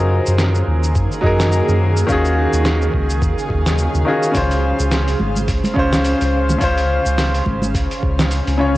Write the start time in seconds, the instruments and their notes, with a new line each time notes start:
Already playing: analog synth bass F#2, ambient pad D#3 A#3 G#4, grand piano F#3 D#4 G#4 A#4
0.27 analog synth bass F#2, cabasa
0.38 snare, cabasa
0.55 cabasa
0.68 analog synth bass D#2
0.84 cabasa
0.95 analog synth bass F#2, kick, cabasa
1.12 cabasa
1.21 analog synth bass F#2, grand piano F#3 D#4 G#4, kick
1.26 grand piano A#4
1.40 snare, cabasa
1.52 cabasa
1.69 analog synth bass F#2, cabasa
1.97 cabasa
2.07 analog synth bass D#2, ambient pad C#3 F#3 G#4 F5, grand piano D#3 C#4 F4, kick, cabasa
2.11 grand piano F#4 G#4
2.25 cabasa
2.53 analog synth bass D#2, cabasa
2.65 snare, cabasa
2.82 cabasa
2.94 analog synth bass C#2, kick
3.10 cabasa
3.22 analog synth bass D#2, kick, cabasa
3.39 cabasa
3.50 analog synth bass D#2, kick
3.66 snare, cabasa
3.78 cabasa
3.95 analog synth bass D#2, cabasa
4.05 grand piano D#3 C#4 F4 F#4 G#4
4.23 cabasa
4.32 analog synth bass C#2, grand piano C#3 C#4, ambient pad C5, kick, open hi-hat, cabasa
4.36 grand piano F4 C5
4.51 open hi-hat, cabasa
4.79 analog synth bass C#2, cabasa
4.92 snare, open hi-hat, cabasa
5.08 open hi-hat, cabasa
5.20 analog synth bass G#1, high conga
5.36 high conga, cabasa
5.48 analog synth bass C#2, kick, open hi-hat, cabasa
5.64 open hi-hat, high conga, cabasa
5.74 analog synth bass C#2, grand piano C#3 C#4 F4, kick
5.79 grand piano C5
5.92 snare, open hi-hat, low conga, cabasa
6.05 open hi-hat, cabasa
6.21 analog synth bass C#2, open hi-hat, cabasa
6.49 high conga, low conga, cabasa
6.58 analog synth bass C#2, grand piano C#3 C#4 F4, kick, open hi-hat, cabasa
6.62 ambient pad C#4, grand piano C5
6.78 open hi-hat, cabasa
7.06 analog synth bass C#2, cabasa
7.18 snare, open hi-hat, cabasa
7.35 open hi-hat, cabasa
7.46 analog synth bass G#1, kick, high conga
7.62 high conga, cabasa
7.74 analog synth bass C#2, kick, open hi-hat, cabasa
7.91 open hi-hat, cabasa
8.03 analog synth bass C#2, kick
8.19 snare, open hi-hat, low conga, cabasa
8.31 open hi-hat, cabasa
8.47 analog synth bass C#2, open hi-hat, cabasa
8.58 grand piano C#3 C#4 F4 C#5